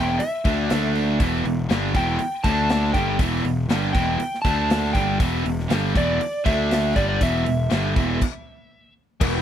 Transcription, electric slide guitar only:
Already playing: G5
0.19 E5
1.96 G5
2.44 A5
2.94 G5
3.93 G5
4.42 A5
4.93 G5
5.97 D5
6.46 E5
6.96 D5
7.09 D5
7.23 E5

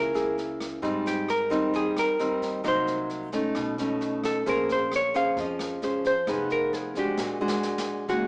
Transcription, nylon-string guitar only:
Already playing: C#3 A#3 E4 G#4
0.14 A#3 E4 G#4
0.82 G#2 G3 C4 D#4
1.50 G3 C4 D#4
1.73 D#3
2.19 G3 C4 D#4
2.64 C3 F#3 A#3 D#4
3.33 A3 C#4 D#4
3.56 B2
3.79 A3 C#4 D#4
4.46 A#3 C#4 G#4 C5
5.14 C#4 G#4 C5
5.38 F3
5.83 C#4 G#4 C5
6.27 F3 B3 D#4 G#4
6.96 G#3 D4 F#4
7.18 A#2
7.41 G#3 D4 F#4
8.09 D#3 G#3 C#4 F#4

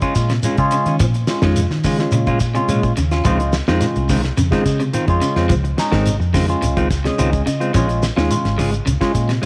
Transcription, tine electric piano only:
0.01 G#3 C#4 F4
0.58 G#3 C#4 F4
1.28 G#3 C#4 F4
1.99 G#3 C#4 F4
2.54 G#3 C#4 F4
3.24 G#3 C#4 F4
3.79 G#3 C#4 F4
4.50 G#3 C#4 G#4
5.08 G#3 C#4 F4
5.78 G#3 C#4 D#4
6.48 G#3 C#4 F4
7.05 G#3 C#4 G#4
7.20 G#5
7.47 D#5
7.74 G#3 C#4 F4
8.30 G#3 C#4 F4
9.01 G#3 C#4 F4

